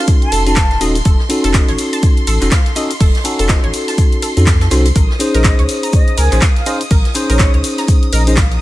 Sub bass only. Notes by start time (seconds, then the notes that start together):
0.32 F1
0.81 D#1
1.05 F1
1.44 F1
1.69 A1
2.27 A1
2.42 F1
3.01 F1
3.39 F1
3.64 A1
4.37 F2
4.71 C2
4.96 A#1
5.34 A#1
5.59 C#2
6.18 C#2
6.32 A#1
6.91 A#1
7.30 A#1
7.54 C#2
8.13 A#1